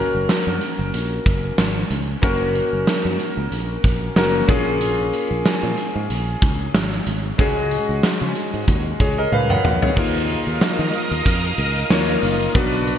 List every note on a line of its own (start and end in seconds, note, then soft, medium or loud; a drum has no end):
0.00 2.18 A#3 medium
0.00 2.19 C#4 medium
0.00 2.19 F#4 medium
0.00 2.23 A#4 medium
0.15 0.26 F#1 medium
0.29 muted fretless electric bass stroke soft
0.29 snare medium
0.29 closed hi-hat medium
0.47 0.58 F#2 medium
0.61 closed hi-hat medium
0.79 0.90 F#1 medium
0.94 1.18 A#1 medium
0.94 closed hi-hat medium
1.26 1.50 F#1 medium
1.26 kick medium
1.26 closed hi-hat medium
1.58 1.83 G#1 medium
1.58 snare loud
1.58 closed hi-hat medium
1.90 2.15 C#2 medium
1.90 closed hi-hat medium
2.22 2.60 F#1 loud
2.22 4.12 A#3 medium
2.22 4.12 C#4 medium
2.22 4.13 F#4 medium
2.22 4.13 A#4 medium
2.22 kick loud
2.22 closed hi-hat medium
2.55 closed hi-hat medium
2.73 2.84 F#1 medium
2.87 snare loud
2.87 closed hi-hat medium
3.05 3.16 F#2 medium
3.19 closed hi-hat medium
3.37 3.48 C#2 medium
3.52 3.76 A#1 medium
3.52 closed hi-hat medium
3.84 4.08 A#1 medium
3.84 kick medium
3.84 closed hi-hat medium
4.16 4.41 F#1 medium
4.16 4.46 A#3 medium
4.16 4.47 C#4 soft
4.16 4.49 F#4 medium
4.16 4.49 A#4 medium
4.16 snare loud
4.16 closed hi-hat medium
4.48 5.10 A#1 medium
4.48 7.02 A#3 medium
4.48 7.03 C#4 medium
4.48 7.03 F4 medium
4.48 7.03 G#4 medium
4.48 kick loud
4.48 closed hi-hat medium
4.81 closed hi-hat medium
5.13 closed hi-hat medium
5.31 5.42 A#1 medium
5.46 snare medium
5.46 closed hi-hat medium
5.63 5.74 A#2 medium
5.77 closed hi-hat medium
5.96 6.06 G#2 medium
6.10 6.34 A#1 medium
6.10 closed hi-hat medium
6.42 6.66 C#2 medium
6.42 kick medium
6.42 closed hi-hat medium
6.74 6.99 G#1 medium
6.74 snare loud
6.74 closed hi-hat medium
6.92 closed hi-hat soft
7.06 7.31 G#1 medium
7.06 closed hi-hat medium
7.38 7.77 C#2 loud
7.38 9.93 G#3 medium
7.38 9.93 C#4 medium
7.38 9.93 F#4 medium
7.38 8.98 G#4 medium
7.38 kick loud
7.38 closed hi-hat medium
7.71 closed hi-hat medium
7.89 8.00 C#2 medium
8.03 muted fretless electric bass stroke soft
8.03 snare loud
8.03 closed hi-hat medium
8.21 8.32 C#3 medium
8.35 closed hi-hat medium
8.54 8.65 G#2 medium
8.54 closed hi-hat soft
8.68 8.92 D#2 medium
8.68 kick medium
8.68 closed hi-hat medium
9.00 9.24 C#2 medium
9.00 9.18 G#4 soft
9.00 9.17 C#5 medium
9.00 kick medium
9.00 closed hi-hat medium
9.18 9.32 A#4 medium
9.18 9.32 D#5 medium
9.32 9.57 C#2 medium
9.32 9.50 B4 medium
9.32 9.50 F5 medium
9.32 high tom soft
9.50 9.81 C#5 medium
9.50 9.81 F#5 medium
9.50 mid tom medium
9.64 9.89 A#1 medium
9.64 mid tom medium
9.82 10.14 G#4 soft
9.82 10.13 C#5 medium
9.82 floor tom medium
9.96 10.35 D#2 medium
9.96 11.86 A#3 medium
9.96 11.87 D#4 medium
9.96 11.87 F4 medium
9.96 12.53 A#4 medium
9.96 11.88 A#4 medium
9.96 12.52 D#5 medium
9.96 12.53 F5 medium
9.96 12.52 D#6 medium
9.96 kick loud
9.96 crash medium
10.15 closed hi-hat medium
10.29 closed hi-hat medium
10.29 tambourine soft
10.47 10.58 D#2 medium
10.47 closed hi-hat soft
10.61 muted fretless electric bass stroke soft
10.61 snare loud
10.61 tambourine medium
10.79 10.90 D#3 medium
10.79 closed hi-hat soft
10.94 closed hi-hat medium
10.94 tambourine soft
11.11 11.22 D#2 medium
11.11 closed hi-hat soft
11.26 11.50 F2 medium
11.26 kick medium
11.26 closed hi-hat medium
11.26 tambourine soft
11.44 closed hi-hat medium
11.58 11.82 C#2 medium
11.58 closed hi-hat medium
11.76 closed hi-hat soft
11.90 12.15 D#2 medium
11.90 12.55 A#3 medium
11.90 12.55 D#4 soft
11.90 12.55 F4 medium
11.90 12.55 C#5 medium
11.90 snare loud
11.90 tambourine medium
12.08 closed hi-hat soft
12.23 12.47 F#1 medium
12.23 open hi-hat medium
12.23 tambourine soft
12.40 closed hi-hat soft
12.54 12.93 B1 loud
12.54 12.98 B3 medium
12.54 12.98 D4 medium
12.54 12.98 F#4 medium
12.54 12.98 B4 medium
12.54 12.98 D5 medium
12.54 12.98 F#5 medium
12.54 12.98 D6 medium
12.54 kick loud
12.54 closed hi-hat medium
12.73 closed hi-hat medium
12.87 closed hi-hat medium
12.87 tambourine soft